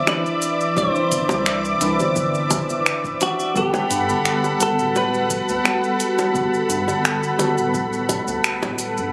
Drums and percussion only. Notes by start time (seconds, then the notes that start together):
0.07 finger snap, high bongo, shaker
0.26 shaker
0.42 closed hi-hat, shaker
0.61 shaker
0.77 kick, high bongo, shaker
0.95 shaker
1.12 kick, closed hi-hat, shaker
1.29 high bongo, shaker
1.46 finger snap, shaker
1.65 shaker
1.81 closed hi-hat, shaker
2.00 high bongo, shaker
2.16 kick, shaker
2.35 shaker
2.51 kick, closed hi-hat, high bongo, shaker
2.70 shaker
2.86 finger snap, shaker
3.04 kick, shaker
3.21 closed hi-hat, high bongo, shaker
3.40 shaker
3.56 kick, shaker
3.74 high bongo, shaker
3.91 closed hi-hat, shaker
4.09 shaker
4.25 finger snap, shaker
4.44 high bongo, shaker
4.61 closed hi-hat, shaker
4.79 shaker
4.96 high bongo, shaker
5.14 shaker
5.30 kick, closed hi-hat, shaker
5.49 shaker
5.65 finger snap, high bongo, shaker
5.84 shaker
6.00 closed hi-hat, shaker
6.19 high bongo, shaker
6.35 kick, shaker
6.54 shaker
6.70 kick, closed hi-hat, shaker
6.88 high bongo, shaker
7.05 finger snap, shaker
7.23 shaker
7.39 closed hi-hat, high bongo, shaker
7.58 shaker
7.74 kick, shaker
7.93 shaker
8.09 kick, closed hi-hat, high bongo, shaker
8.28 shaker
8.44 finger snap, shaker
8.62 kick, high bongo, shaker
8.79 closed hi-hat, shaker
8.98 shaker